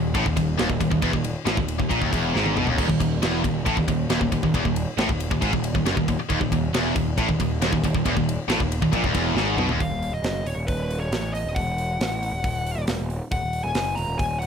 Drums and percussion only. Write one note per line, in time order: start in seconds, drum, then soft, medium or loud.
0.14 kick loud
0.14 ride loud
0.26 kick medium
0.37 kick medium
0.37 ride medium
0.59 snare loud
0.59 ride loud
0.70 kick medium
0.81 kick medium
0.81 ride medium
0.92 kick medium
1.02 kick medium
1.02 ride loud
1.13 kick medium
1.24 ride medium
1.46 snare loud
1.46 ride loud
1.57 kick loud
1.68 ride medium
1.80 kick medium
1.91 kick medium
1.91 ride medium
2.02 kick medium
2.13 kick medium
2.13 ride medium
2.36 snare medium
2.46 high tom medium
2.57 mid tom medium
2.67 floor tom medium
2.78 kick loud
2.78 crash loud
2.90 kick medium
3.00 kick medium
3.00 ride medium
3.23 snare loud
3.23 ride loud
3.44 kick medium
3.44 ride medium
3.66 kick loud
3.66 ride loud
3.77 kick medium
3.88 kick medium
3.88 ride medium
4.10 snare loud
4.10 ride loud
4.21 kick medium
4.32 kick medium
4.32 ride medium
4.43 kick medium
4.54 kick medium
4.54 ride loud
4.65 kick medium
4.76 ride medium
4.98 snare loud
4.98 ride loud
5.09 kick medium
5.20 ride medium
5.31 kick medium
5.42 kick medium
5.42 ride loud
5.53 kick medium
5.64 ride medium
5.75 kick medium
5.86 snare loud
5.86 ride loud
5.97 kick loud
6.08 kick medium
6.08 ride medium
6.30 kick loud
6.30 ride medium
6.41 kick medium
6.52 kick medium
6.52 ride medium
6.74 snare loud
6.74 ride loud
6.96 kick loud
6.96 ride medium
7.18 kick loud
7.18 ride loud
7.29 kick medium
7.40 kick medium
7.40 ride medium
7.62 snare loud
7.62 ride loud
7.73 kick loud
7.84 kick medium
7.84 ride medium
7.95 kick medium
8.06 kick medium
8.06 ride loud
8.17 kick medium
8.29 ride medium
8.50 snare loud
8.50 ride loud
8.60 kick medium
8.72 ride medium
8.82 kick medium
8.93 kick medium
8.93 ride loud
9.04 kick medium
9.14 kick medium
9.14 ride medium
9.37 snare medium
9.58 mid tom medium
9.69 floor tom medium
9.80 kick loud
9.80 open hi-hat medium
10.02 open hi-hat medium
10.24 snare loud
10.24 open hi-hat medium
10.46 open hi-hat medium
10.68 kick loud
10.68 open hi-hat medium
10.91 open hi-hat medium
11.12 snare loud
11.12 open hi-hat medium
11.35 open hi-hat medium
11.56 kick medium
11.56 open hi-hat medium
11.78 open hi-hat medium
12.01 snare loud
12.01 open hi-hat medium
12.23 open hi-hat medium
12.44 kick loud
12.44 open hi-hat medium
12.66 open hi-hat medium
12.87 snare loud
12.87 open hi-hat medium
13.10 open hi-hat soft
13.32 kick medium
13.32 open hi-hat medium
13.53 open hi-hat medium
13.75 snare loud
13.75 open hi-hat medium
13.97 open hi-hat medium
14.19 kick loud
14.19 open hi-hat medium
14.42 open hi-hat medium